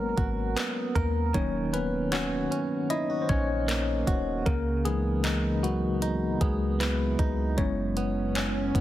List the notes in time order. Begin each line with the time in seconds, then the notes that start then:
Already playing: G#1 F#3 G#3 A#3 B3 C#4 F#4 A#4 B4 C#5
0.17 G#1 F#4, kick, closed hi-hat
0.56 B3, clap, closed hi-hat
0.95 D#2 A#3 A#4, kick, closed hi-hat
1.34 D#1 D#3 F#3 A#3 C#4 C#5, kick, closed hi-hat
1.73 B3 C#4 B4, closed hi-hat
2.12 C#4 F#4 C#5, clap, closed hi-hat
2.51 C#4, closed hi-hat
2.90 D#4 E4 D#5, closed hi-hat
3.10 F#4
3.22 C5
3.29 A#1 C#4 C#5, kick, closed hi-hat
3.68 A#3, clap, closed hi-hat
4.07 D#1 F#4, kick, closed hi-hat
4.46 C#2 C#3 A#3 A#4, kick, closed hi-hat
4.85 E3 G#3 B3 D#4 G#4, closed hi-hat
5.24 D#4, clap, closed hi-hat
5.63 F#3 B3 F#4, closed hi-hat
6.02 D#4, closed hi-hat
6.41 C#2 G#3 B3 G#4, kick, closed hi-hat
6.80 E3 B3 B4, clap, closed hi-hat
7.19 C#2 D#4, kick, closed hi-hat
7.58 F#1 F#2 G#3 B3 C#4 E4 C#5, kick, closed hi-hat, swell
7.97 B3, closed hi-hat
8.35 C#4, clap, closed hi-hat
8.75 F#1 G#3 B3 E4, kick, closed hi-hat